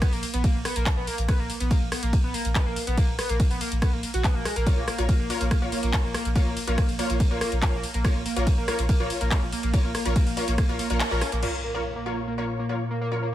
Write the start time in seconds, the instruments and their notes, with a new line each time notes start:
0.02 analog synth lead B3, kick, cross-stick, closed hi-hat, ride
0.13 sub bass A#1, analog synth lead A#3, open hi-hat
0.23 open hi-hat
0.34 sub bass A#1, analog synth lead B3, closed hi-hat
0.44 analog synth lead A#3, kick, closed hi-hat, ride
0.55 sub bass A#1
0.65 analog synth lead B3, cross-stick, open hi-hat
0.76 sub bass A#1, analog synth lead A#3, closed hi-hat
0.86 kick, clap, closed hi-hat, ride
0.97 sub bass A#1, analog synth lead B3
1.07 analog synth lead A#3, open hi-hat
1.18 sub bass A#1, closed hi-hat
1.28 analog synth lead B3, kick, cross-stick, closed hi-hat, ride
1.39 sub bass A#1, analog synth lead A#3
1.50 open hi-hat
1.60 sub bass A#1, analog synth lead B3, closed hi-hat
1.71 analog synth lead A#3, kick, closed hi-hat, ride
1.82 sub bass A#1
1.92 analog synth lead B3, cross-stick, open hi-hat
2.03 sub bass A#1, analog synth lead A#3, closed hi-hat
2.13 kick, closed hi-hat, ride
2.24 sub bass A#1, analog synth lead B3
2.34 analog synth lead A#3, open hi-hat
2.45 sub bass A#1, closed hi-hat
2.55 analog synth lead B3, kick, cross-stick, clap, closed hi-hat, ride
2.66 sub bass A#1, analog synth lead A#3
2.76 open hi-hat
2.87 sub bass A#1, analog synth lead B3, closed hi-hat
2.98 analog synth lead A#3, kick, closed hi-hat, ride
3.08 sub bass A#1
3.19 analog synth lead B3, cross-stick, open hi-hat
3.29 sub bass A#1, analog synth lead A#3, closed hi-hat
3.40 kick, closed hi-hat, ride
3.51 sub bass A#1, analog synth lead B3, open hi-hat
3.61 analog synth lead A#3, open hi-hat
3.72 sub bass A#1, closed hi-hat
3.82 analog synth lead B3, kick, cross-stick, closed hi-hat, ride
3.93 sub bass A#1, analog synth lead A#3
4.03 open hi-hat
4.14 sub bass A#1, analog synth lead F#4, closed hi-hat
4.24 analog synth lead B3, kick, clap, closed hi-hat, ride
4.35 sub bass A#1, analog synth lead A#3
4.45 analog synth lead G#3, cross-stick, open hi-hat
4.56 sub bass A#1, analog synth lead A#3, closed hi-hat
4.67 synth stab F4 A#4 C#5, kick, closed hi-hat, ride
4.77 sub bass A#1, analog synth lead A#3
4.88 analog synth lead A#3, cross-stick, open hi-hat
4.98 sub bass A#1, synth stab F4 A#4 C#5, closed hi-hat
5.09 analog synth lead A#3, kick, closed hi-hat, ride
5.20 sub bass A#1, analog synth lead A#3
5.30 synth stab F4 A#4 C#5, open hi-hat
5.41 sub bass A#1, analog synth lead A#3, closed hi-hat
5.51 analog synth lead A#3, kick, cross-stick, closed hi-hat, ride
5.62 sub bass A#1, synth stab F4 A#4 C#5
5.72 analog synth lead A#3, open hi-hat
5.83 sub bass A#1, analog synth lead A#3, closed hi-hat
5.93 synth stab F4 A#4 C#5, kick, clap, closed hi-hat, ride
6.04 sub bass A#1, analog synth lead A#3
6.14 analog synth lead A#3, cross-stick, open hi-hat
6.25 sub bass A#1, closed hi-hat
6.36 analog synth lead A#3, synth stab F4 A#4 C#5, kick, closed hi-hat, ride
6.46 sub bass A#1, analog synth lead A#3
6.57 open hi-hat
6.67 sub bass A#1, analog synth lead A#3, synth stab F4 A#4 C#5, closed hi-hat
6.78 analog synth lead A#3, kick, cross-stick, closed hi-hat, ride
6.89 sub bass A#1, open hi-hat
6.99 analog synth lead A#3, synth stab F4 A#4 C#5, open hi-hat
7.10 sub bass A#1, analog synth lead A#3, closed hi-hat
7.20 kick, closed hi-hat, ride
7.31 sub bass A#1, analog synth lead A#3, synth stab F4 A#4 C#5
7.41 analog synth lead A#3, cross-stick, open hi-hat
7.52 sub bass A#1, closed hi-hat
7.62 analog synth lead A#3, synth stab F4 A#4 C#5, kick, clap, closed hi-hat, ride
7.73 sub bass A#1, analog synth lead A#3
7.83 open hi-hat
7.94 sub bass A#1, analog synth lead A#3, closed hi-hat
8.04 analog synth lead A#3, synth stab F4 A#4 C#5, kick, cross-stick, closed hi-hat, ride
8.15 sub bass A#1
8.26 analog synth lead A#3, open hi-hat
8.36 sub bass A#1, analog synth lead A#3, synth stab F4 A#4 C#5, closed hi-hat
8.47 kick, closed hi-hat, ride
8.58 sub bass A#1, analog synth lead A#3
8.68 analog synth lead A#3, synth stab F4 A#4 C#5, cross-stick, open hi-hat
8.79 sub bass A#1, closed hi-hat
8.89 analog synth lead A#3, kick, closed hi-hat, ride
9.00 sub bass A#1, analog synth lead A#3, synth stab F4 A#4 C#5
9.10 open hi-hat
9.21 sub bass A#1, analog synth lead A#3, closed hi-hat
9.31 analog synth lead A#3, synth stab F4 A#4 C#5, kick, cross-stick, clap, closed hi-hat, ride
9.42 sub bass A#1
9.52 analog synth lead A#3, open hi-hat
9.63 sub bass A#1, analog synth lead A#3, closed hi-hat
9.74 synth stab F4 A#4 C#5, kick, closed hi-hat, ride
9.84 sub bass A#1, analog synth lead A#3
9.95 analog synth lead A#3, cross-stick, open hi-hat
10.05 sub bass A#1, synth stab F4 A#4 C#5, closed hi-hat
10.16 analog synth lead A#3, kick, closed hi-hat, ride
10.27 sub bass A#1, analog synth lead A#3, open hi-hat
10.37 synth stab F4 A#4 C#5, open hi-hat
10.48 sub bass A#1, analog synth lead A#3, closed hi-hat
10.58 analog synth lead A#3, kick, cross-stick, closed hi-hat, ride
10.69 sub bass A#1, synth stab F4 A#4 C#5
10.79 analog synth lead A#3, open hi-hat
10.90 sub bass A#1, analog synth lead A#3, synth stab F4 A#4 C#5, closed hi-hat
11.00 clap, closed hi-hat, ride
11.11 sub bass A#1, synth stab F4 A#4 C#5, analog synth lead A#4
11.21 analog synth lead C#4, cross-stick, open hi-hat
11.32 sub bass A#1, analog synth lead A#3, closed hi-hat
11.43 synth drone A#2, analog synth lead A#3, synth stab F4 A#4 C#5, crash, impact
11.64 analog synth lead A#3
11.74 analog synth lead A#3, synth stab F4 A#4 C#5
11.96 analog synth lead A#3
12.06 analog synth lead A#3, synth stab F4 A#4 C#5
12.27 analog synth lead A#3
12.38 analog synth lead A#3, synth stab F4 A#4 C#5
12.59 analog synth lead A#3
12.69 analog synth lead A#3, synth stab F4 A#4 C#5
12.90 analog synth lead A#3
13.01 analog synth lead A#3
13.12 synth stab F4 A#4 C#5
13.22 analog synth lead A#3